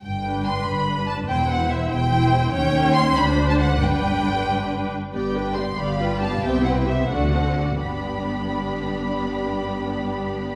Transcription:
<<
  \new Staff \with { instrumentName = "Violin section" } { \time 6/8 \key g \major \tempo 4. = 91 g''4 c'''8 b''4 a''8 | g''8 fis''8 e''8 g''4. | g''4 c'''8 b''8. a''16 fis''8 | g''2~ g''8 r8 |
g''4 c'''8 b''4 a''8 | g''8 fis''8 e''8 fis''4. | b''2.~ | b''2. | }
  \new Staff \with { instrumentName = "Violin section" } { \time 6/8 \key g \major g''4 c'''8 b''4 a''8 | g''8 fis''8 e''8 g''4. | g''4 c'''8 b''8. a''16 fis''8 | g''2~ g''8 r8 |
d''8 <b' g''>8 d''8 <d'' f''>8 <b' g''>8 <d'' f''>8 | <c'' e''>8 <b' g''>8 <c'' e''>8 <fis' d''>8 <a' c''>8 <fis' d''>8 | <g' d''>2.~ | <g' d''>2. | }
  \new Staff \with { instrumentName = "Viola section" } { \time 6/8 \key g \major r8 <d' b'>4. <d' b'>4 | <e' c''>8 <e' c''>4. <e' c''>4 | <des' des''>4. <d' c''>4. | <d' b'>2~ <d' b'>8 r8 |
<b g'>8 <d' b'>8 <b g'>8 <b g'>8 <d' f'>8 <b g'>8 | <b g'>8 <c' e'>8 <b g'>8 <a d'>8 <c' fis'>8 <a d'>8 | <b d'>2.~ | <b d'>2. | }
  \new Staff \with { instrumentName = "Cello section" } { \clef bass \time 6/8 \key g \major g,4. g,4. | e,4. e,4. | ees,4. d,4. | g,2~ g,8 r8 |
g,4. g,4. | c4. d4. | g,2.~ | g,2. | }
  \new Staff \with { instrumentName = "Double bass section" } { \clef bass \time 6/8 \key g \major g,,4. g,,4. | e,,4. e,,4. | ees,4. d,4. | g,,2~ g,,8 r8 |
g,,4. g,,4. | c,4. d,4. | g,,2.~ | g,,2. | }
>>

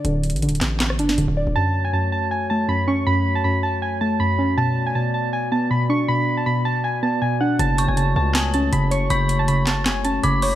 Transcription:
<<
  \new Staff \with { instrumentName = "Synth bell" } { \time 4/4 \key fis \minor \tempo 4 = 159 r1 | r1 | r1 | r1 |
r1 | r8 cis'''4. a''2 | cis'''2. d'''8 cis'''8 | }
  \new Staff \with { instrumentName = "Synth keys" } { \time 4/4 \key fis \minor r1 | a''8. gis''16 a''8 a''8 gis''8 a''8 b''8 cis'''8 | b''8. a''16 b''8 a''8 gis''8 a''8 b''4 | a''8. gis''16 a''8 a''8 gis''8 a''8 b''8 cis'''8 |
b''8. a''16 b''8 a''8 gis''8 a''8 gis''8 fis''8 | a''8. gis''16 a''8 a''8 gis''8 a''8 b''8 cis'''8 | b''8. a''16 b''8 a''8 gis''8 a''8 b''4 | }
  \new Staff \with { instrumentName = "Glass harmonica" } { \time 4/4 \key fis \minor << { r1 | <a cis''>1~ | <a cis''>1 | <b d''>1~ |
<b d''>1 | <a cis''>1~ | <a cis''>1 | } \\ { r1 | fis'1~ | fis'1~ | fis'1~ |
fis'1~ | fis'1~ | fis'1 | } >> }
  \new Staff \with { instrumentName = "Synth pluck" } { \clef bass \time 4/4 \key fis \minor <d d' d''>4 d4. d'8 d8 d''8 | fis,4 fis,4. a8 fis,8 cis'8 | fis,4 fis,4. a8 fis,8 cis'8 | b,4 b,4. b8 b,8 d'8 |
b,4 b,4. b8 b,8 d'8 | cis4 cis4. cis'8 cis8 cis''8 | cis4 cis4. cis'8 cis8 cis''8 | }
  \new Staff \with { instrumentName = "808-style bass" } { \clef bass \time 4/4 \key fis \minor d,,8. a,,16. d,,16. a,,4 fis,,8 d,,16 d,,8 d,,16 | r1 | r1 | r1 |
r1 | fis,,8. fis,,8. cis,4. fis,,4 | fis,,2. fis,,4 | }
  \new DrumStaff \with { instrumentName = "Drums" } \drummode { \time 4/4 \tuplet 3/2 { hh16 r16 r16 hh16 hh16 hh16 hh16 hh16 hh16 <hc hh sn>16 r16 r16 } <hc hh sn>16 ss16 hh16 sn16 hh4 | r4 r4 r4 r4 | r4 r4 r4 r4 | r4 r4 r4 r4 |
r4 r4 r4 r4 | hh8 hh8 hh4 <hc hh sn>8 hh8 hh8 hh8 | hh8 hh8 hh8 <hc hh sn>8 <hc hh sn>8 hh8 hh8 hho8 | }
>>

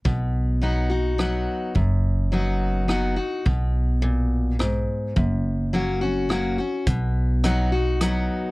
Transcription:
<<
  \new Staff \with { instrumentName = "Steel-string acoustic guitar" } { \time 3/4 \key b \major \tempo 4 = 106 << { r4 <fis b dis' fis'>8 <dis' fis'>8 <fis b dis' fis'>4 | r4 <fis b dis' fis'>4 <fis b dis' fis'>8 <dis' fis'>8 | r2. | r4 <fis ais cis' fis'>8 <cis' fis'>8 <fis ais cis' fis'>8 <cis' fis'>8 |
r4 <fis b dis' fis'>8 <dis' fis'>8 <fis b dis' fis'>4 | } \\ { b,2 r4 | fis,2 r4 | b,4 ais,4 gis,4 | fis,2 r4 |
b,2 r4 | } >> }
  \new Staff \with { instrumentName = "Upright bass" } { \clef bass \time 3/4 \key b \major b,,2. | fis,,2. | b,,2. | fis,,2. |
b,,2. | }
  \new DrumStaff \with { instrumentName = "Drums" } \drummode { \time 3/4 bd4 r4 ss4 | bd4 r4 ss4 | bd4 r4 ss4 | bd4 r4 ss4 |
<hh bd>4 <hh ss>4 <hh ss>4 | }
>>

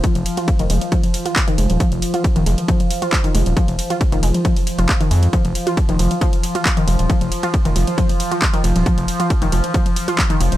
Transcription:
<<
  \new Staff \with { instrumentName = "Synth arpeggio sound" } { \clef bass \time 4/4 \key f \minor \tempo 4 = 136 f16 r8 f'16 r16 ees16 aes16 r16 f16 r8 f'16 r16 ees16 aes16 r16 | f16 r8 f'16 r16 ees16 aes16 r16 f16 r8 f'16 r16 ees16 aes16 r16 | f16 r8 f'16 r16 ees16 aes16 r16 f16 r8 f'16 r16 ees16 aes16 r16 | f16 r8 f'16 r16 ees16 f16 r16 f16 r8 f'16 r16 ees16 f16 r16 |
f16 r8 f'16 r16 ees16 f16 r16 f16 r8 f'16 r16 ees16 f16 r16 | f16 r8 f'16 r16 ees16 f16 r16 f16 r8 f'16 r16 ees16 f16 r16 | }
  \new Staff \with { instrumentName = "Synth drone" } { \clef bass \time 4/4 \key f \minor f1~ | f1~ | f1~ | f1~ |
f1~ | f1 | }
  \new Staff \with { instrumentName = "Analog synth bass" } { \clef bass \time 4/4 \key f \minor r16 f,,16 r8. f,,16 f,,16 r4. r16 f,,16 ees,,16 | r16 f,,16 r8. f,,16 f,,16 r4. r16 f,,16 ees,,16 | r16 f,,16 r8. f,,16 f,,16 r4 f,,16 r8 f,8 | r16 f,,16 r8. f,,16 f,,16 r4. r16 f,,16 ees,,16 |
r16 f,,16 r8. f,,16 f,,16 r4. r16 f,,16 ees,,16 | r16 f,,16 r8. f,,16 f,,16 r4. r16 f,,16 ees,,16 | }
  \new DrumStaff \with { instrumentName = "Drums" } \drummode { \time 4/4 <hh bd cymr>16 <hh cymr toml>16 <hho cymr>16 <hh cymr toml>16 <hh bd cymr>16 <hh cymr toml>16 <hho cymr>16 <hh cymr toml>16 <hh bd cymr>16 <hho cymr toml>16 <hho cymr>16 <hh cymr toml>16 <hc hh bd cymr>16 <hh cymr toml>16 <hho cymr>16 <hh cymr toml>16 | <hh bd cymr>16 <hh cymr toml>16 <hho cymr>16 <hh cymr toml>16 <hh bd cymr>16 <hh cymr toml>16 <hho cymr>16 <hh cymr toml>16 <hh bd cymr>16 <hh cymr toml>16 <hho cymr>16 <hh cymr toml>16 <hc hh bd cymr>16 <hh cymr toml>16 <hho cymr>16 <hh cymr toml>16 | <hh bd cymr>16 <hh cymr toml>16 <hho cymr>16 <hh cymr toml>16 <hh bd cymr>16 <hh cymr toml>16 <hho cymr>16 <hh cymr toml>16 <hh bd cymr>16 <hho cymr toml>16 <hho cymr>16 <hh cymr toml>16 <hc hh bd cymr>16 <hh cymr toml>16 <hho cymr>16 <hh cymr toml>16 | <hh bd cymr>16 <hh cymr toml>16 <hho cymr>16 <hh cymr toml>16 <hh bd cymr>16 <hh cymr toml>16 <hho cymr>16 <hh cymr toml>16 <hh bd cymr>16 <hh cymr toml>16 <hho cymr>16 <hh cymr toml>16 <hc hh bd cymr>16 <hh cymr toml>16 <hho cymr>16 <hh cymr toml>16 |
<hh bd cymr>16 <hh cymr toml>16 <hho cymr>16 <hh cymr toml>16 <hh bd cymr>16 <hh cymr toml>16 <hho cymr>16 <hh cymr toml>16 <hh bd cymr>16 <hho cymr toml>16 <hho cymr>16 <hh cymr toml>16 <hc hh bd cymr>16 <hh cymr toml>16 <hho cymr>16 <hh cymr toml>16 | <hh bd cymr>16 <hh cymr toml>16 <hho cymr>16 <hh cymr toml>16 <hh bd cymr>16 <hh cymr toml>16 <hho cymr>16 <hh cymr toml>16 <hh bd cymr>16 <hh cymr toml>16 <hho cymr>16 <hh cymr toml>16 <hc hh bd cymr>16 <hh cymr toml>16 <hho cymr>16 <hh cymr toml>16 | }
>>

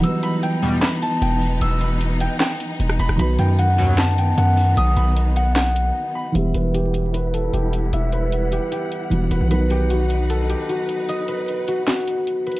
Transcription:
<<
  \new Staff \with { instrumentName = "Harp" } { \time 4/4 \key e \minor \tempo 4 = 152 e'''8 b''8 g''4 b''8 a''8 g''8 r8 | e'''8 b''8 r8 g''8 g''4. b''8 | b''8 g''8 fis''4 a''8 g''8 fis''8 r8 | dis'''8 b''8 r8 fis''8 fis''4. b''8 |
e''8 b'8 g'4 b'8 a'8 g'8 r8 | e''8 b'8 r8 g'8 g'4. b'8 | b'8 g'8 fis'4 a'8 g'8 fis'8 r8 | dis''8 b'8 r8 fis'8 fis'4. b'8 | }
  \new Staff \with { instrumentName = "String section" } { \time 4/4 \key e \minor << { dis'1~ | dis'1~ | dis'1~ | dis'1 |
fis''1~ | fis''1~ | fis''1~ | fis''1 | } \\ { <e b>1~ | <e b>1 | <dis b>1~ | <dis b>1 |
<g e'>1~ | <g e'>1 | <dis' b'>1~ | <dis' b'>1 | } >> }
  \new Staff \with { instrumentName = "Felt piano" } { \time 4/4 \key e \minor <e fis g b b'>1~ | <e fis g b b'>1 | <dis fis b fis' b'>1~ | <dis fis b fis' b'>1 |
<e g b g'>1~ | <e g b g'>2. <e g b fis'>4 | <dis fis b fis'>1~ | <dis fis b fis'>1 | }
  \new Staff \with { instrumentName = "Analog polysynth" } { \clef bass \time 4/4 \key e \minor r4. <e, b, g>8 r2 | r1 | r4. <dis, b, fis>8 r2 | r1 |
r1 | r1 | r1 | r1 | }
  \new Staff \with { instrumentName = "808-style bass" } { \clef bass \time 4/4 \key e \minor r2. e,,4 | e,,4.~ e,,16 r4 r16 e,,8 e,,16 e,,16 | b,,8 fis,2~ fis,8 fis,4 | b,,8 b,,2~ b,,8 r4 |
e,,8 e,,2~ e,,8 e,,4 | e,,4.~ e,,16 r4 r16 e,,8 e,,16 b,,16~ | b,,2~ b,,8. r4 r16 | r1 | }
  \new DrumStaff \with { instrumentName = "Drums" } \drummode { \time 4/4 hh8 hh8 hh8 hho8 <hc hh sn>8 hh8 hh8 hho8 | hh8 hh8 hh8 hh8 <hc hh sn>8 hh8 hh16 ss16 hh16 ss16 | hh8 hh8 hh8 hho8 <hc hh sn>8 hh8 hh8 hho8 | hh8 hh8 hh8 hh8 <hc hh sn>8 hh8 r4 |
hh8 hh8 hh8 hh8 hh8 hh8 hh8 hh8 | hh8 hh8 hh8 hh8 hh8 hh8 hh8 hh8 | hh8 hh8 hh8 hh8 hh8 hh8 hh8 hh8 | hh8 hh8 hh8 hh8 <hc hh sn>8 hh8 hh8 hh32 hh32 hh16 | }
>>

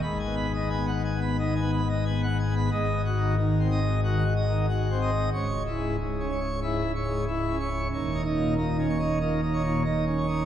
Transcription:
<<
  \new Staff \with { instrumentName = "Pipe organ" } { \time 4/4 \key gis \minor \tempo 4 = 92 b''16 gis''16 b''16 dis''16 gis''16 fis''16 gis''16 b''16 dis''16 gis''16 b''16 dis''16 gis''16 fis''16 gis''16 b''16 | dis''8 fis'8 dis8 dis''8 fis'8 dis''8 fis'8 dis''8 | cis''8 e'8 gis,8 cis''8 e'8 cis''8 e'8 cis''8 | cis''8 dis'8 ais,8 cis''8 dis'8 cis''8 dis'8 cis''8 | }
  \new Staff \with { instrumentName = "Pipe organ" } { \clef bass \time 4/4 \key gis \minor << { \tuplet 3/2 { gis,8 b8 r8 b8 r8 b8 dis8 b8 r8 b8 r8 b8 } | \tuplet 3/2 { gis,4 dis8 r8 bis8 r8 dis8 r8 dis8 r8 bis8 r8 } | \tuplet 3/2 { cis,4 gis,8 r8 cis'8 r8 gis,8 r8 gis,8 r8 cis'8 r8 } | \tuplet 3/2 { dis,8 dis'8 ais,8 dis'8 cis'8 dis'8 ais,8 dis'8 ais,8 r8 cis'8 dis'8 } | } \\ { gis,,1 | gis,,1 | cis,,1 | dis,,1 | } >> }
>>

